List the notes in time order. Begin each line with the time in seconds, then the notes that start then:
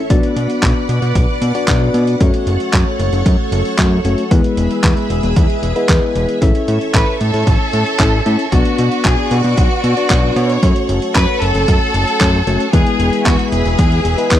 0.10 B1 B3 D4 F#4 B4 D5 F#5 D6, kick, closed hi-hat
0.23 closed hi-hat
0.36 B2, closed hi-hat
0.50 closed hi-hat
0.63 B1, kick, clap, closed hi-hat
0.89 B2, closed hi-hat
1.02 B2, closed hi-hat
1.15 B1, kick, closed hi-hat
1.41 B2, closed hi-hat
1.55 B3 D4 F#4 D5, closed hi-hat
1.68 B1, kick, clap, closed hi-hat
1.94 B2, closed hi-hat
2.07 closed hi-hat
2.20 F#2 A3 C#4 F#4 A4 C#5 C#6, kick, closed hi-hat
2.34 closed hi-hat
2.47 F#1, closed hi-hat
2.60 closed hi-hat
2.73 F#2, kick, clap, closed hi-hat
2.99 F#1, closed hi-hat
3.12 F#1, closed hi-hat
3.26 F#2, kick, closed hi-hat
3.52 F#1, closed hi-hat
3.65 closed hi-hat
3.78 F#2 A3 C#4 F#4 C#5, kick, clap, closed hi-hat
4.05 F#1 A3 C#4 F#4 C#5, closed hi-hat
4.18 closed hi-hat
4.31 E2 G#3 B3 E4 G#4 B4 E5 B5, kick, closed hi-hat
4.44 closed hi-hat
4.57 E1, closed hi-hat
4.71 closed hi-hat
4.84 E2, kick, clap, closed hi-hat
4.97 closed hi-hat
5.10 E1, closed hi-hat
5.23 E1, closed hi-hat
5.36 E2, kick, closed hi-hat
5.50 closed hi-hat
5.63 E1, closed hi-hat
5.76 G#3 B3 E4 B4, closed hi-hat
5.89 E2, kick, clap, closed hi-hat
6.15 E1, closed hi-hat
6.29 closed hi-hat
6.42 A1 C#4 E4 A4 C#5 E5 C#6, kick, closed hi-hat
6.55 closed hi-hat
6.68 A2, closed hi-hat
6.81 closed hi-hat
6.94 A1 B4, kick, clap, closed hi-hat
7.21 A2 A4, closed hi-hat
7.34 A2, closed hi-hat
7.47 A1, kick, closed hi-hat
7.73 A2, closed hi-hat
7.86 closed hi-hat
8.00 A1 C#4 E4 A4 E5, kick, clap, closed hi-hat
8.26 A2 C#4 E4 A4 E5, closed hi-hat
8.39 closed hi-hat
8.52 B1 B3 D4 F#4 B4 D5 F#5 D6, kick, closed hi-hat
8.65 closed hi-hat
8.78 B2, closed hi-hat
8.92 closed hi-hat
9.05 B1 G#4, kick, clap, closed hi-hat
9.31 B2 F#4, closed hi-hat
9.44 B2, closed hi-hat
9.57 B1, kick, closed hi-hat
9.84 B2, closed hi-hat
9.97 B3 D4 F#4 D5, closed hi-hat
10.10 B1, kick, clap, closed hi-hat
10.36 B2 C#5, closed hi-hat
10.50 closed hi-hat
10.63 F#2 A3 C#4 F#4 A4 C#5 C#6, kick, closed hi-hat
10.76 closed hi-hat
10.89 F#1, closed hi-hat
11.02 closed hi-hat
11.15 F#2 B4, kick, clap, closed hi-hat
11.42 F#1 A4, closed hi-hat
11.55 F#1, closed hi-hat
11.68 F#2, kick, closed hi-hat
11.94 F#1, closed hi-hat
12.08 closed hi-hat
12.21 F#2 A3 C#4 F#4 C#5, kick, clap, closed hi-hat
12.47 F#1 A3 C#4 F#4 C#5, closed hi-hat
12.60 closed hi-hat
12.73 E2 G#3 B3 E4 G#4 B4 E5 B5, kick, closed hi-hat
12.87 closed hi-hat
13.00 E1, closed hi-hat
13.13 closed hi-hat
13.26 E2 F#4, kick, clap, closed hi-hat
13.39 closed hi-hat
13.52 E1 G#4, closed hi-hat
13.65 E1, closed hi-hat
13.79 E2, kick, closed hi-hat
13.92 closed hi-hat
14.05 E1, closed hi-hat
14.18 G#3 B3 E4 B4, closed hi-hat
14.31 E2, kick, clap, closed hi-hat